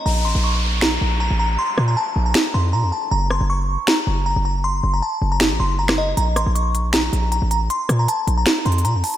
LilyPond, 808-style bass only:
\new Staff \with { instrumentName = "808-style bass" } { \clef bass \time 4/4 \key ges \lydian \tempo 4 = 157 bes,,8 a,,16 bes,,4.~ bes,,16 bes,,8. a,,8. | r8 bes,8 r8 bes,,8 r8 f,8 bes,16 f,16 r8 | ges,,8. ges,,4 r8. ges,,8. ges,,8.~ | ges,,8 ges,,8 r8 ges,,8. a,,16 ges,,4. |
bes,,8 a,,16 bes,,4.~ bes,,16 bes,,8. a,,8. | r8 bes,8 r8 bes,,8 r8 f,8 bes,16 f,16 r8 | }